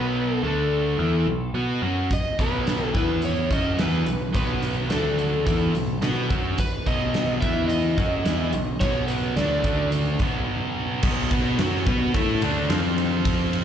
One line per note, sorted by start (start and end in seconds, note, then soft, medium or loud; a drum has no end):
0.00 0.40 B1 medium
0.00 0.43 B2 medium
0.00 0.43 F#3 medium
0.00 0.43 B3 medium
0.00 0.34 B4 medium
0.34 0.45 A4 medium
0.43 0.95 D2 medium
0.43 0.98 D3 medium
0.43 0.99 A3 medium
0.43 0.99 D4 medium
0.43 1.52 A4 medium
0.99 1.25 E2 medium
0.99 1.26 E3 medium
0.99 1.27 B3 medium
0.99 1.27 E4 medium
1.26 1.53 B1 medium
1.26 1.49 B2 medium
1.26 1.50 F#3 medium
1.54 1.80 B2 medium
1.54 1.82 B3 medium
1.54 1.82 F#4 medium
1.54 1.83 B4 medium
1.82 2.09 F#2 medium
1.82 2.10 F#3 medium
1.82 2.10 C#4 medium
1.82 2.10 F#4 medium
2.11 2.41 D#5 medium
2.11 kick loud
2.11 closed hi-hat medium
2.39 2.91 B1 medium
2.39 2.94 B2 medium
2.39 2.94 F#3 medium
2.39 2.94 B3 medium
2.39 2.95 B4 medium
2.39 kick medium
2.39 closed hi-hat medium
2.67 snare loud
2.67 closed hi-hat medium
2.94 3.47 E2 medium
2.94 3.50 E3 medium
2.94 3.50 B3 medium
2.94 3.50 E4 medium
2.94 3.22 B4 medium
2.94 kick medium
2.94 closed hi-hat medium
3.22 3.52 C#5 medium
3.22 closed hi-hat medium
3.50 3.77 F#2 medium
3.50 3.78 F#3 medium
3.50 3.78 C#4 medium
3.50 3.78 F#4 medium
3.50 3.81 D#5 medium
3.50 kick loud
3.50 closed hi-hat medium
3.78 4.05 E2 medium
3.78 4.06 E3 medium
3.78 4.06 B3 medium
3.78 4.06 E4 medium
3.78 4.35 B4 medium
3.78 snare loud
3.78 closed hi-hat medium
4.06 4.33 B1 medium
4.06 4.29 B2 medium
4.06 4.29 F#3 medium
4.06 closed hi-hat medium
4.34 4.87 B1 medium
4.34 4.89 B2 medium
4.34 4.90 F#3 medium
4.34 4.90 B3 medium
4.34 4.91 B4 medium
4.34 kick loud
4.34 closed hi-hat medium
4.62 closed hi-hat medium
4.90 5.42 D2 medium
4.90 5.45 D3 medium
4.90 5.45 A3 medium
4.90 5.46 D4 medium
4.90 5.99 A4 medium
4.90 snare loud
4.90 closed hi-hat medium
5.18 closed hi-hat medium
5.47 5.73 E2 medium
5.47 5.74 E3 medium
5.47 5.74 B3 medium
5.47 5.74 E4 medium
5.47 kick medium
5.47 closed hi-hat medium
5.75 6.01 B1 medium
5.75 5.97 B2 medium
5.75 5.97 F#3 medium
5.75 closed hi-hat medium
6.02 6.29 B2 medium
6.02 6.29 B3 medium
6.02 6.29 F#4 medium
6.02 6.30 B4 medium
6.02 snare loud
6.02 closed hi-hat medium
6.30 6.56 F#2 medium
6.30 6.57 F#3 medium
6.30 6.58 C#4 medium
6.30 6.58 F#4 medium
6.30 kick loud
6.30 closed hi-hat medium
6.58 6.85 B4 medium
6.58 kick loud
6.58 closed hi-hat medium
6.86 7.38 B1 medium
6.86 7.41 B2 medium
6.86 7.41 F#3 medium
6.86 7.42 B3 medium
6.86 7.40 D#5 medium
6.86 kick medium
6.86 closed hi-hat medium
7.14 snare loud
7.14 closed hi-hat medium
7.41 7.94 E2 medium
7.41 7.97 E3 medium
7.41 7.97 B3 loud
7.41 7.97 E4 medium
7.41 7.67 E5 medium
7.41 kick medium
7.41 closed hi-hat medium
7.68 8.80 D#5 medium
7.68 closed hi-hat medium
7.97 8.23 F#2 medium
7.97 8.24 F#3 medium
7.97 8.25 C#4 medium
7.97 8.25 F#4 loud
7.97 kick loud
7.97 closed hi-hat medium
8.25 8.51 E2 medium
8.25 8.52 E3 medium
8.25 8.53 B3 medium
8.25 8.53 E4 medium
8.25 snare loud
8.25 closed hi-hat medium
8.53 8.80 B1 medium
8.53 8.75 B2 medium
8.53 8.76 F#3 medium
8.53 closed hi-hat medium
8.80 9.33 B1 medium
8.80 9.36 B2 medium
8.80 9.36 F#3 medium
8.80 9.36 B3 medium
8.80 9.08 C#5 medium
8.80 kick medium
8.80 closed hi-hat medium
9.08 9.34 B4 medium
9.08 closed hi-hat medium
9.36 9.62 D2 medium
9.36 9.63 D3 medium
9.36 9.64 A3 medium
9.36 9.64 D4 medium
9.36 9.88 D5 medium
9.36 snare medium
9.36 closed hi-hat medium
9.64 10.16 D2 medium
9.64 10.19 D3 medium
9.64 10.20 A3 loud
9.64 10.20 D4 medium
9.64 kick medium
9.64 closed hi-hat medium
9.92 closed hi-hat medium
10.19 10.46 B1 medium
10.19 11.02 B2 medium
10.19 11.02 F#3 medium
10.19 11.03 B3 medium
10.19 kick loud
10.19 closed hi-hat medium
11.03 11.29 B1 medium
11.03 11.30 B2 medium
11.03 11.30 F#3 medium
11.03 11.30 B3 medium
11.03 kick loud
11.03 crash loud
11.31 11.57 B2 medium
11.31 11.58 B3 medium
11.31 11.58 F#4 loud
11.31 11.58 B4 loud
11.31 kick medium
11.31 ride medium
11.58 11.84 F#2 medium
11.58 11.86 F#3 medium
11.58 11.86 C#4 medium
11.58 11.86 F#4 medium
11.58 snare loud
11.58 ride medium
11.87 12.12 B2 loud
11.87 12.14 B3 medium
11.87 12.14 F#4 medium
11.87 12.14 B4 loud
11.87 kick loud
11.87 ride medium
12.14 12.40 A2 medium
12.14 12.41 A3 medium
12.14 12.42 E4 medium
12.14 12.42 A4 medium
12.14 kick loud
12.14 ride medium
12.42 12.68 D2 medium
12.42 12.69 D3 medium
12.42 12.69 A3 medium
12.42 12.70 D4 loud
12.42 ride medium
12.70 13.64 F2 medium
12.70 13.64 F3 medium
12.70 13.64 C4 medium
12.70 13.64 F4 loud
12.70 snare loud
12.70 ride medium
12.98 ride medium
13.25 kick loud
13.25 ride medium
13.53 ride medium